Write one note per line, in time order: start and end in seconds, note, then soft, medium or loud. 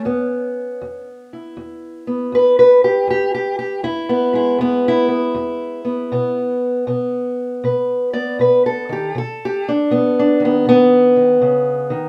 0.00 1.06 C#4 loud
0.05 0.76 E2 medium
0.05 2.07 B3 medium
0.81 1.52 E2 medium
1.33 3.06 E4 soft
1.57 2.27 E2 medium
2.07 4.09 B3 soft
2.32 3.03 E2 medium
2.32 2.58 B4 medium
2.59 2.84 B4 medium
2.84 3.09 G4 medium
3.07 3.78 E2 medium
3.07 3.33 G4 medium
3.35 3.57 G4 medium
3.59 3.83 G4 medium
3.83 4.54 E2 medium
3.83 4.34 E4 medium
4.09 4.60 B3 medium
4.33 6.08 G#3 soft
4.33 4.85 E4 medium
4.59 5.30 E2 medium
4.59 5.07 B3 medium
4.88 6.38 E4 loud
5.08 5.84 B3 soft
5.35 6.05 E2 medium
5.85 6.12 B3 soft
6.12 6.82 B2 medium
6.12 6.87 B3 medium
6.87 7.57 B2 medium
6.87 8.13 B3 soft
7.64 8.33 B2 medium
7.64 8.13 B4 soft
8.13 8.92 B3 soft
8.13 8.38 D5 medium
8.39 9.09 B2 medium
8.39 8.65 B4 medium
8.66 9.15 A4 medium
8.89 9.11 D#3 soft
8.89 9.16 G4 medium
9.15 9.84 B2 medium
9.15 10.17 A4 medium
9.45 9.67 G4 medium
9.69 9.91 D4 medium
9.90 10.60 B2 medium
9.90 10.41 B3 medium
10.19 10.42 D4 medium
10.40 11.15 D#3 soft
10.45 10.67 B3 medium
10.65 11.35 B2 medium
10.65 12.09 B3 loud
11.16 11.41 D#3 soft
11.42 11.90 C#3 medium
11.90 12.09 D#3 medium